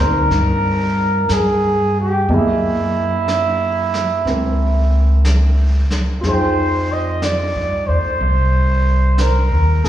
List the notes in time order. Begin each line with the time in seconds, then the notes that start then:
Already playing: A#2 A#3 C4 D4 G5
0.00 D2 D#4 A#4
0.30 G2, brush sweep, snare
1.29 G2 G#4, brush sweep, snare, hi-hat pedal
2.00 G4
2.28 F#2 E3 A#3 G#4 D#5, brush sweep
2.34 E4
3.28 brush sweep, snare, hi-hat pedal
3.94 snare
4.25 C#2 C4 E4, brush sweep, snare
4.30 A#4
5.25 brush sweep, snare, hi-hat pedal
5.90 muted upright bass stroke, snare
6.21 F2 F4 G#4, brush sweep, snare
6.28 D#4 C5 G5
6.92 D#5
7.22 D5, brush sweep, snare, hi-hat pedal
7.55 G2
7.88 E2 C5
8.20 C2, brush sweep
9.18 A#4, brush sweep, snare, hi-hat pedal
9.51 D#2
9.84 A#1 G#4, snare